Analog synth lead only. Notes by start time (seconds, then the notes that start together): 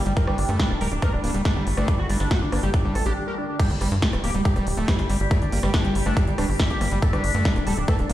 0.06 G3
0.17 A#4
0.28 D4
0.38 D4
0.60 D4
0.70 D4
0.81 A#4
0.92 D4
1.02 A#4
1.13 D4
1.24 D4
1.45 D4
1.56 D4
1.77 D4
1.88 D4
1.99 F#4
2.10 D4
2.20 D4
2.31 F#4
2.42 D4
2.52 D4
2.63 G4
2.74 D4
2.85 D4
2.95 A4
3.06 D4
3.17 D4
3.27 A#4
3.38 D4
3.49 D4
3.60 G4
3.70 G3
3.81 G3
4.02 G3
4.13 G3
4.24 G4
4.34 G3
4.45 G4
4.56 G3
4.67 G3
4.88 G3
4.99 G3
5.20 G3
5.31 G3
5.42 D4
5.52 G3
5.63 G3
5.74 D4
5.85 G3
5.95 G3
6.06 D4
6.17 G3
6.27 G3
6.38 D4
6.49 G3
6.60 G3
6.70 G4
6.81 G3
6.92 G3
7.02 A4
7.13 D4
7.24 D4
7.45 D4
7.56 D4
7.67 A4
7.77 D4
7.88 A4
7.99 D4
8.10 D4